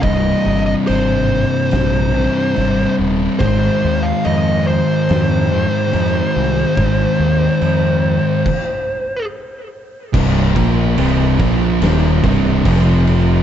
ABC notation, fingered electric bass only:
X:1
M:4/4
L:1/8
Q:1/4=71
K:Cm
V:1 name="Fingered electric bass" clef=bass
C,,, G,,, A,,,2 B,,,2 A,,, E,,, | A,,, E,, F,,2 F,,2 F,, C,, | A,,, E,, F,,2 z4 | C,,, B,,, C,,, B,,, E,,, C,,, F,,,2 |]